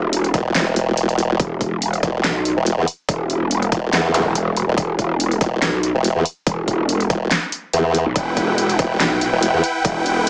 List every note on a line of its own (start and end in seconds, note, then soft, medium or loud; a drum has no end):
0.00 0.32 E1 loud
0.13 closed hi-hat medium
0.24 closed hi-hat soft
0.34 0.54 E1 loud
0.34 kick loud
0.34 closed hi-hat medium
0.55 1.38 E1 loud
0.55 snare loud
0.55 clap medium
0.55 closed hi-hat medium
0.76 closed hi-hat medium
0.97 closed hi-hat medium
1.09 closed hi-hat soft
1.19 closed hi-hat medium
1.40 2.01 E1 loud
1.40 kick loud
1.40 closed hi-hat medium
1.61 kick medium
1.61 closed hi-hat medium
1.82 closed hi-hat medium
1.93 closed hi-hat soft
2.03 2.23 E1 loud
2.03 kick loud
2.03 closed hi-hat medium
2.24 2.55 B1 loud
2.24 snare loud
2.24 clap medium
2.24 closed hi-hat medium
2.45 closed hi-hat medium
2.57 2.76 E1 loud
2.66 closed hi-hat medium
2.78 2.86 E2 loud
2.88 closed hi-hat medium
3.09 3.70 E1 loud
3.09 kick loud
3.09 closed hi-hat medium
3.30 closed hi-hat medium
3.51 closed hi-hat medium
3.62 closed hi-hat soft
3.72 3.92 E1 loud
3.72 kick loud
3.72 closed hi-hat medium
3.93 4.24 E2 loud
3.93 snare loud
3.93 clap medium
3.93 closed hi-hat medium
4.14 closed hi-hat medium
4.14 zap medium
4.26 4.66 E1 loud
4.35 closed hi-hat medium
4.57 closed hi-hat medium
4.68 4.76 E1 loud
4.78 5.39 E1 loud
4.78 kick loud
4.78 closed hi-hat medium
4.99 kick medium
4.99 closed hi-hat medium
5.20 closed hi-hat medium
5.31 closed hi-hat soft
5.41 5.61 E1 loud
5.41 kick loud
5.41 closed hi-hat medium
5.62 5.93 B1 loud
5.62 snare loud
5.62 clap medium
5.62 closed hi-hat medium
5.83 closed hi-hat medium
5.95 6.14 E1 loud
6.04 closed hi-hat medium
6.16 6.24 E2 loud
6.25 closed hi-hat medium
6.47 7.09 E1 loud
6.47 kick loud
6.47 closed hi-hat medium
6.68 kick medium
6.68 closed hi-hat medium
6.89 closed hi-hat medium
7.00 closed hi-hat soft
7.10 7.30 E1 loud
7.10 kick loud
7.10 closed hi-hat medium
7.31 snare loud
7.31 clap medium
7.31 closed hi-hat medium
7.52 closed hi-hat medium
7.73 8.04 E2 loud
7.73 closed hi-hat medium
7.95 closed hi-hat medium
8.06 8.14 B1 loud
8.16 8.78 E1 loud
8.16 10.29 E4 medium
8.16 10.29 B4 medium
8.16 10.29 F#5 medium
8.16 10.29 G5 medium
8.16 kick loud
8.16 closed hi-hat medium
8.37 kick medium
8.37 closed hi-hat medium
8.58 closed hi-hat medium
8.69 closed hi-hat soft
8.79 8.99 E1 loud
8.79 kick loud
8.79 closed hi-hat medium
9.00 9.31 B1 loud
9.00 snare loud
9.00 clap medium
9.00 closed hi-hat medium
9.21 closed hi-hat medium
9.33 9.52 E1 loud
9.43 closed hi-hat medium
9.54 9.62 E2 loud
9.64 closed hi-hat medium
9.85 10.29 E1 loud
9.85 kick loud
9.85 closed hi-hat medium
10.06 closed hi-hat medium